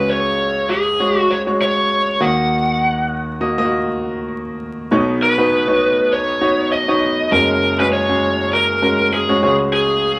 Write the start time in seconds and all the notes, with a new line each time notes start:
Already playing: C#2 C#3 G#3 F#4 B4 C#5
0.10 C#5
0.70 G#4
1.00 G#3 F#4 C#5
1.18 F#4
1.30 C#5
1.47 G#3 F#4 C#5
1.62 C#5
2.20 D#2 D#3 A#3 F#4 D#5 F#5
3.41 A#3 F#4 D#5
3.58 A#3 F4 D#5
3.65 F#4
4.91 B1 B2 B3 D#4 F#4 C#5
5.23 B4
5.38 B3 D#4 F#4 B4
5.68 B3 D#4 F#4 C#5
5.74 D#5
6.13 C#5
6.41 B3 D#4 F#4 C#5
6.72 D#5
6.88 B3 D#4 F#4 C#5
7.32 F#1 F#2 G#3 C#4 F#4 A#4
7.79 G#3 C#4 F#4 G#4 B4
7.93 C#5
8.09 G#3 C#4 F#4 G#4
8.53 A#4
8.82 G#3 C#4 F#4 A#4
9.13 G#4
9.29 G#3 C#4 F#4 C#5
9.43 C#2 C#3 G#3 C#4 F#4 C#5
9.73 G#4